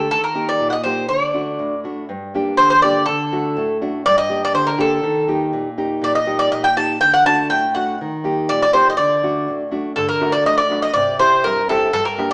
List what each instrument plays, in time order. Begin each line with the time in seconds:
0.11 nylon-string guitar D#3, bouzouki A4
0.24 bouzouki A#4
0.34 nylon-string guitar A#3 D#4 G4
0.49 bouzouki D5
0.60 nylon-string guitar A#2
0.70 bouzouki D#5 F#5
0.84 nylon-string guitar A#3 D#4 G4, bouzouki C5
1.09 nylon-string guitar D3, bouzouki D5
1.34 nylon-string guitar A3 D4 F#4
1.59 nylon-string guitar A2
1.84 nylon-string guitar A3 D4 F#4
2.09 nylon-string guitar G2
2.34 nylon-string guitar A#3 D4 G4
2.57 nylon-string guitar D3, bouzouki C5
2.70 bouzouki C5
2.82 nylon-string guitar A#3 D4 G4, bouzouki D5
3.06 nylon-string guitar D3, bouzouki A4
3.32 nylon-string guitar A3 D4 F#4
3.57 nylon-string guitar A2
3.82 nylon-string guitar A3 D4 F#4
4.06 nylon-string guitar G2, bouzouki D5
4.18 bouzouki D#5
4.29 nylon-string guitar A#3 D4 G4
4.45 bouzouki D5
4.54 nylon-string guitar D3, bouzouki C5
4.67 bouzouki A#4
4.78 nylon-string guitar A#3 D4 G4, bouzouki A4
5.03 nylon-string guitar D#3
5.28 nylon-string guitar A#3 D#4 G4
5.53 nylon-string guitar A#2
5.78 nylon-string guitar A#3 D#4 G4
6.02 nylon-string guitar A#2, bouzouki D5
6.15 bouzouki D#5
6.26 nylon-string guitar A#3 D#4 G4
6.39 bouzouki D5
6.52 nylon-string guitar A#2, bouzouki D#5
6.64 bouzouki G5
6.77 nylon-string guitar A#3 D#4 G4, bouzouki A5
7.01 nylon-string guitar D3, bouzouki G5
7.14 bouzouki F#5
7.25 nylon-string guitar A3 D4 F#4, bouzouki A5
7.50 nylon-string guitar A2, bouzouki G5
7.75 nylon-string guitar A3 D4 F#4, bouzouki F#5
8.01 nylon-string guitar D#3
8.24 nylon-string guitar A#3 D#4 G4
8.49 nylon-string guitar A#2, bouzouki D5
8.62 bouzouki D5
8.73 nylon-string guitar A#3 D#4 G4, bouzouki C5
8.90 bouzouki D#5
8.97 nylon-string guitar D3, bouzouki D5
9.23 nylon-string guitar A3 D4 F#4
9.48 nylon-string guitar A2
9.71 nylon-string guitar A3 D4 F#4
9.96 nylon-string guitar D3, bouzouki A4, darbuka dum
10.09 bouzouki A#4
10.20 nylon-string guitar A3 D4 F#4, darbuka tek
10.32 bouzouki D5
10.45 nylon-string guitar A2, bouzouki D#5, darbuka tek
10.58 bouzouki D5, darbuka tek
10.70 nylon-string guitar A3 D4 F#4, darbuka tek
10.82 bouzouki D#5
10.94 nylon-string guitar C3, bouzouki D5, darbuka dum
11.19 nylon-string guitar C4 E4 G4, bouzouki C5, darbuka tek
11.44 nylon-string guitar G2, bouzouki A#4, darbuka tek
11.58 darbuka tek
11.68 nylon-string guitar C4 E4 G4, bouzouki A4, darbuka tek
11.93 nylon-string guitar G2, bouzouki A4, darbuka dum
12.05 bouzouki A#4
12.18 nylon-string guitar A#3 D4 G4, darbuka tek